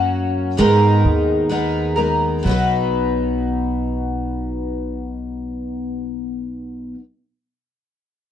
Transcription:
Already playing: upright bass F#2, twelve-string acoustic guitar F#3 A#3 C#4 F#4
0.57 twelve-string acoustic guitar G#2 D#3 G#3 B3 D#4 A#4, upright bass G#2
1.05 upright bass D#2
1.49 twelve-string acoustic guitar G#3 B3 D#4 A#4
1.96 twelve-string acoustic guitar G#3 B3 D#4 A#4
2.43 upright bass B1, twelve-string acoustic guitar B2 F#3
2.47 twelve-string acoustic guitar B3 D#4 B4

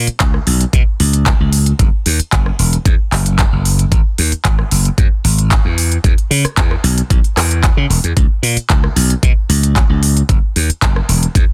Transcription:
0.07 muted slap bass stroke, closed hi-hat
0.20 slap bass C#2, kick, clap, closed hi-hat
0.34 cross-stick
0.47 slap bass B1, open hi-hat
0.61 closed hi-hat
0.73 slap bass B2, kick, closed hi-hat
1.00 slap bass C#2, open hi-hat
1.13 closed hi-hat
1.26 kick, clap, closed hi-hat
1.40 slap bass C#2
1.53 open hi-hat
1.66 closed hi-hat
1.79 slap bass F#1, kick, closed hi-hat
2.06 slap bass D#2, open hi-hat
2.19 muted slap bass stroke, closed hi-hat
2.32 slap bass F#1, kick, clap, closed hi-hat
2.46 cross-stick
2.59 slap bass E1, open hi-hat
2.73 closed hi-hat
2.85 slap bass E2, kick, closed hi-hat
3.12 slap bass F#1, clap, open hi-hat
3.26 closed hi-hat
3.39 kick, clap, closed hi-hat
3.52 slap bass F#1
3.65 open hi-hat
3.79 closed hi-hat
3.92 slap bass G#1, kick, closed hi-hat
4.18 slap bass D#2, open hi-hat
4.32 muted slap bass stroke, closed hi-hat
4.45 slap bass G#1, kick, clap, closed hi-hat
4.59 cross-stick
4.71 slap bass F#1, open hi-hat
4.85 closed hi-hat
4.98 slap bass F#2, kick, closed hi-hat
5.24 slap bass G#1, open hi-hat
5.38 closed hi-hat
5.51 kick, clap, closed hi-hat
5.65 slap bass E2
5.78 open hi-hat
5.92 closed hi-hat
6.04 slap bass E2, kick, closed hi-hat
6.18 closed hi-hat
6.31 slap bass C#3, open hi-hat
6.44 muted slap bass stroke, cross-stick, closed hi-hat
6.57 slap bass E2, kick, clap, closed hi-hat
6.71 cross-stick
6.84 slap bass B1, open hi-hat
6.98 closed hi-hat
7.10 slap bass B1, kick, closed hi-hat
7.24 closed hi-hat
7.37 slap bass E2, cross-stick, clap, open hi-hat
7.51 closed hi-hat
7.63 kick, clap, closed hi-hat
7.77 slap bass C#3
7.90 slap bass E1, open hi-hat
8.04 slap bass E2, closed hi-hat
8.17 slap bass C#2, kick, closed hi-hat
8.43 slap bass A#2, open hi-hat
8.57 muted slap bass stroke, closed hi-hat
8.70 slap bass C#2, kick, clap, closed hi-hat
8.84 cross-stick
8.96 slap bass B1, open hi-hat
9.10 closed hi-hat
9.23 slap bass B2, kick, closed hi-hat
9.49 slap bass C#2, open hi-hat
9.63 closed hi-hat
9.76 kick, clap, closed hi-hat
9.89 slap bass C#2
10.03 open hi-hat
10.17 closed hi-hat
10.29 slap bass F#1, kick, closed hi-hat
10.56 slap bass D#2, open hi-hat
10.69 muted slap bass stroke, closed hi-hat
10.82 slap bass F#1, kick, clap, closed hi-hat
10.96 cross-stick
11.09 slap bass E1, open hi-hat
11.23 closed hi-hat
11.35 slap bass E2, kick, closed hi-hat

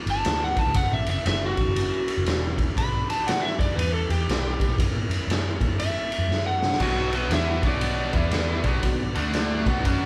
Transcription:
Already playing: tonewheel organ B3 F4 A4
0.06 picked electric bass G1, ride
0.11 electric slide guitar A5
0.25 picked electric bass D2, snare, ride
0.44 electric slide guitar F#5
0.57 electric slide guitar A5, kick, ride
0.66 picked electric bass C#2
0.74 picked electric bass F#1, tonewheel organ C#4 E4 A#4, electric slide guitar F#5, kick, ride
0.92 picked electric bass A#1, electric slide guitar E5
1.06 picked electric bass F#1, electric slide guitar E5, ride
1.25 picked electric bass F#1, electric slide guitar E5, snare, ride
1.45 electric slide guitar F#4
1.57 picked electric bass A#1, kick, ride
1.66 picked electric bass F#1
1.76 ride
2.08 ride
2.18 picked electric bass F#1
2.26 picked electric bass E1, snare, ride
2.58 kick, ride
2.76 picked electric bass B1, tonewheel organ D4 F#4 B4, electric slide guitar B5, kick, ride
3.10 electric slide guitar A5, ride
3.27 electric slide guitar F#5, snare, ride
3.42 electric slide guitar E5, snare
3.59 picked electric bass F#2, electric slide guitar D5, kick, ride
3.76 picked electric bass E2, tonewheel organ E4 G4 B4, electric slide guitar B4, ride
3.94 electric slide guitar A4
4.09 picked electric bass E2, electric slide guitar G4, ride
4.28 picked electric bass B1, snare, ride
4.60 kick, ride
4.69 picked electric bass B1
4.77 picked electric bass F#2, tonewheel organ E4 A#4 C#5, kick, ride
4.93 picked electric bass A#2
5.09 picked electric bass F#2, ride
5.27 picked electric bass F#2, ride
5.31 snare
5.60 picked electric bass A#2, kick, ride
5.68 picked electric bass F#2
5.80 electric slide guitar E5, ride
6.12 ride
6.19 picked electric bass F#2
6.28 picked electric bass F#2, snare
6.47 electric slide guitar F#5
6.62 snare
6.73 snare
6.80 picked electric bass B1, distorted electric guitar B2 F#3 B3, tonewheel organ D4 B4, electric slide guitar F#4, kick, crash
7.13 electric slide guitar B4, ride
7.30 picked electric bass E2, distorted electric guitar E3 B3 E4, electric slide guitar E5, snare, ride
7.63 picked electric bass B1, distorted electric guitar B2 F#3 B3, kick, ride
7.67 electric slide guitar D5
7.81 ride
8.13 picked electric bass E2, distorted electric guitar E3 B3 E4, tonewheel organ B3 E4 B4, kick, ride
8.31 snare, ride
8.64 picked electric bass B1, distorted electric guitar B2 F#3 B3, tonewheel organ D4 F#4 B4, kick, ride
8.82 picked electric bass B1, distorted electric guitar B2 F#3, kick, ride
9.14 picked electric bass D2, distorted electric guitar D3 A3 D4, tonewheel organ D4 A4 D5, ride
9.33 snare, ride
9.65 picked electric bass B1, distorted electric guitar B2 F#3 B3, tonewheel organ F#4 B4 D5, kick, ride
9.85 picked electric bass F#2, distorted electric guitar F#3 C#4 F#4, kick, ride

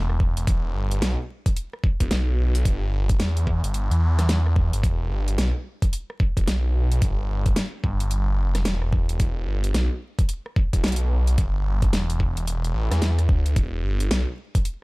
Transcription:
Already playing: detuned saw bass E1
0.10 cross-stick
0.20 kick
0.36 detuned saw bass E1, closed hi-hat
0.47 detuned saw bass E1, kick, closed hi-hat
0.74 detuned saw bass G1
0.91 closed hi-hat
1.02 detuned saw bass B1, snare, closed hi-hat
1.46 kick, closed hi-hat
1.56 closed hi-hat
1.73 cross-stick
1.84 kick
2.00 detuned saw bass E1, kick, closed hi-hat
2.11 detuned saw bass B1, snare, closed hi-hat
2.55 closed hi-hat
2.65 detuned saw bass G1, kick, closed hi-hat
2.92 detuned saw bass G1
3.09 kick, closed hi-hat
3.20 detuned saw bass E2, snare, closed hi-hat
3.37 closed hi-hat
3.47 kick
3.64 detuned saw bass G1, closed hi-hat
3.74 closed hi-hat
3.91 detuned saw bass E2, closed hi-hat
4.19 cross-stick, snare, closed hi-hat
4.29 snare, closed hi-hat
4.46 cross-stick
4.56 kick
4.73 detuned saw bass G1, closed hi-hat
4.83 detuned saw bass E1, kick, closed hi-hat
5.10 detuned saw bass G1
5.28 closed hi-hat
5.38 detuned saw bass B1, snare, closed hi-hat
5.82 kick, closed hi-hat
5.93 closed hi-hat
6.10 cross-stick
6.20 kick
6.37 detuned saw bass E1, kick, closed hi-hat
6.47 detuned saw bass B1, snare, closed hi-hat
6.92 closed hi-hat
7.02 detuned saw bass G1, kick, closed hi-hat
7.29 detuned saw bass G1
7.46 kick, closed hi-hat
7.56 snare, closed hi-hat
7.84 detuned saw bass G1, kick
8.00 closed hi-hat
8.11 closed hi-hat
8.41 detuned saw bass F#1
8.55 cross-stick, snare, closed hi-hat
8.65 detuned saw bass E1, snare, closed hi-hat
8.82 cross-stick
8.93 kick
9.09 detuned saw bass E1, closed hi-hat
9.20 detuned saw bass E1, kick, closed hi-hat
9.47 detuned saw bass G1
9.64 closed hi-hat
9.74 detuned saw bass B1, snare, closed hi-hat
10.19 kick, closed hi-hat
10.29 closed hi-hat
10.46 cross-stick
10.56 kick
10.73 detuned saw bass E1, kick, closed hi-hat
10.83 detuned saw bass B1, snare, closed hi-hat
10.88 closed hi-hat
10.92 closed hi-hat
10.96 closed hi-hat
11.27 closed hi-hat
11.38 detuned saw bass G1, kick, closed hi-hat
11.65 detuned saw bass G1
11.82 kick, closed hi-hat
11.92 detuned saw bass E1, snare, closed hi-hat
12.10 closed hi-hat
12.20 kick
12.37 closed hi-hat
12.47 closed hi-hat
12.65 closed hi-hat
12.74 detuned saw bass A1
12.91 detuned saw bass E2, cross-stick, snare, closed hi-hat
13.01 detuned saw bass E2, snare, closed hi-hat
13.19 cross-stick, closed hi-hat
13.29 detuned saw bass D2, kick
13.46 closed hi-hat
13.56 detuned saw bass E1, kick, closed hi-hat
13.84 detuned saw bass G1
14.00 closed hi-hat
14.11 detuned saw bass B1, snare, closed hi-hat
14.55 kick, closed hi-hat
14.65 closed hi-hat

